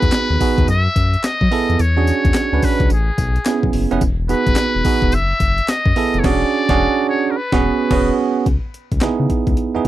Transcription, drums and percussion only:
0.02 kick, closed hi-hat
0.12 snare, clap, closed hi-hat, tambourine
0.41 kick, open hi-hat, tambourine
0.58 kick, closed hi-hat
0.68 closed hi-hat, tambourine
0.96 kick, closed hi-hat, tambourine
1.14 closed hi-hat
1.24 snare, clap, closed hi-hat, tambourine
1.41 kick
1.52 open hi-hat
1.70 closed hi-hat
1.79 closed hi-hat, tambourine
2.07 closed hi-hat, tambourine
2.25 kick, closed hi-hat
2.34 snare, clap, closed hi-hat, tambourine
2.62 kick, open hi-hat, tambourine
2.80 kick, closed hi-hat
2.90 closed hi-hat, tambourine
3.18 kick, closed hi-hat, tambourine
3.36 closed hi-hat
3.46 snare, clap, closed hi-hat, tambourine
3.63 kick
3.73 open hi-hat
3.91 closed hi-hat
4.01 kick, closed hi-hat, tambourine
4.29 closed hi-hat, tambourine
4.47 kick, closed hi-hat
4.56 snare, clap, closed hi-hat, tambourine
4.85 kick, open hi-hat, tambourine
5.02 kick, closed hi-hat
5.12 closed hi-hat, tambourine
5.40 kick, closed hi-hat, tambourine
5.58 closed hi-hat
5.68 snare, clap, closed hi-hat, tambourine
5.86 kick
5.96 open hi-hat
6.14 closed hi-hat
6.24 kick, snare, crash
6.69 kick, snare
7.52 kick, snare
7.91 kick, snare, crash
8.46 kick, closed hi-hat
8.74 closed hi-hat
8.92 kick, closed hi-hat
9.01 snare, clap, closed hi-hat
9.30 kick, closed hi-hat
9.47 kick, closed hi-hat
9.57 closed hi-hat

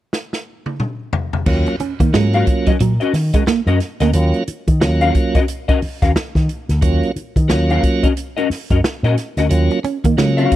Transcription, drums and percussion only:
0.13 snare
0.33 snare
0.66 high tom
0.80 mid tom
1.13 floor tom
1.33 floor tom
1.46 kick, crash
1.66 closed hi-hat
1.80 closed hi-hat
2.00 kick, closed hi-hat
2.14 snare
2.33 closed hi-hat
2.47 kick, closed hi-hat
2.67 kick, closed hi-hat
2.80 closed hi-hat
3.01 closed hi-hat
3.14 snare, open hi-hat
3.34 kick, closed hi-hat
3.47 snare
3.67 closed hi-hat
3.80 snare, closed hi-hat
4.00 snare, closed hi-hat
4.13 closed hi-hat
4.34 closed hi-hat
4.48 closed hi-hat
4.68 kick, closed hi-hat
4.81 snare
5.01 closed hi-hat
5.15 kick, closed hi-hat
5.35 kick, closed hi-hat
5.48 closed hi-hat
5.69 kick, closed hi-hat
5.82 open hi-hat
6.02 kick, snare, closed hi-hat
6.16 snare
6.35 kick, snare, closed hi-hat
6.49 closed hi-hat
6.69 snare, closed hi-hat
6.82 kick, closed hi-hat
7.03 closed hi-hat
7.16 closed hi-hat
7.36 kick, closed hi-hat
7.50 snare
7.70 closed hi-hat
7.83 kick, closed hi-hat
8.03 kick, closed hi-hat
8.17 closed hi-hat
8.38 closed hi-hat
8.51 snare, open hi-hat
8.70 kick, closed hi-hat
8.84 snare
9.04 closed hi-hat
9.18 snare, closed hi-hat
9.37 snare, closed hi-hat
9.50 closed hi-hat
9.71 closed hi-hat
9.84 closed hi-hat
10.04 kick, closed hi-hat
10.18 snare
10.38 closed hi-hat
10.52 kick, closed hi-hat

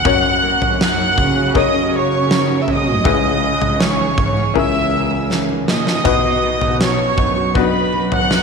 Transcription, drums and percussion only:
0.05 kick, floor tom
0.62 floor tom
0.81 snare
1.18 kick, floor tom
1.55 kick, floor tom
2.31 snare
2.68 floor tom
3.05 kick, floor tom
3.61 floor tom
3.81 snare
4.18 kick, floor tom
4.56 floor tom
5.31 snare
5.68 snare
5.87 snare
6.05 kick, floor tom, splash
6.61 floor tom
6.81 snare
7.18 kick, floor tom
7.55 kick, floor tom
8.12 floor tom
8.31 snare

